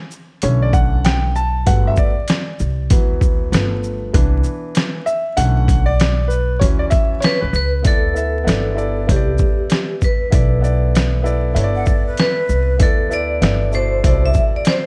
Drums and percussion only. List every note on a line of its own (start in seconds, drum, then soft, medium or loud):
0.11 shaker soft
0.42 closed hi-hat loud
0.73 kick medium
0.73 shaker medium
1.05 snare loud
1.05 closed hi-hat medium
1.36 shaker soft
1.66 kick medium
1.66 closed hi-hat medium
1.96 kick medium
1.96 shaker soft
2.28 snare loud
2.28 closed hi-hat medium
2.59 shaker soft
2.90 kick loud
2.90 closed hi-hat loud
3.21 kick medium
3.21 shaker soft
3.53 snare loud
3.53 closed hi-hat medium
3.83 shaker soft
4.14 kick medium
4.14 closed hi-hat medium
4.44 shaker soft
4.75 snare loud
4.75 closed hi-hat medium
5.07 shaker soft
5.37 closed hi-hat loud
5.68 kick medium
5.68 closed hi-hat medium
5.68 shaker medium
6.00 snare loud
6.00 closed hi-hat medium
6.30 shaker soft
6.61 kick medium
6.61 closed hi-hat medium
6.91 kick medium
6.91 closed hi-hat soft
6.91 shaker soft
7.22 snare loud
7.22 closed hi-hat medium
7.54 shaker soft
7.85 kick loud
7.85 closed hi-hat loud
8.16 shaker soft
8.48 snare loud
8.48 closed hi-hat medium
8.78 shaker soft
9.09 kick medium
9.09 closed hi-hat medium
9.38 kick medium
9.38 shaker soft
9.70 snare loud
9.70 closed hi-hat medium
10.01 kick medium
10.01 shaker soft
10.32 kick loud
10.32 closed hi-hat loud
10.64 shaker medium
10.95 snare loud
10.95 closed hi-hat medium
11.26 shaker soft
11.56 closed hi-hat medium
11.86 kick medium
11.86 shaker soft
12.17 snare loud
12.17 closed hi-hat medium
12.49 shaker medium
12.80 kick loud
12.80 closed hi-hat loud
13.11 shaker soft
13.42 snare loud
13.42 closed hi-hat medium
13.73 shaker soft
14.04 kick medium
14.04 closed hi-hat medium
14.34 kick medium
14.34 shaker soft
14.65 snare loud
14.65 closed hi-hat medium